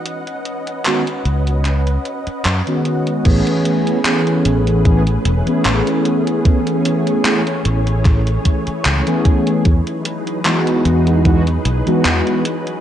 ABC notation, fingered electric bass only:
X:1
M:4/4
L:1/8
Q:"Swing 16ths" 1/4=75
K:Alyd
V:1 name="Fingered electric bass" clef=bass
z3 C,,2 z F,, z | A,,, z2 A,,,2 E,,, A,,, z | z3 A,,,2 z C,, z | E,, z2 E,,2 B,,, E,, z |]